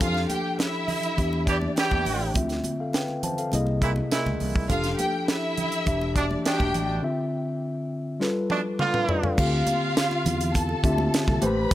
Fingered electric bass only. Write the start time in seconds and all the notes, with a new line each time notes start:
0.01 F2
1.19 E2
1.92 E2
2.07 A1
2.36 D2
3.53 C2
4.26 C#2
4.41 C2
4.70 F1
5.87 E1
6.60 E1
6.75 A1
9.38 D2
10.26 E2
10.84 D2
11.28 C2
11.42 A1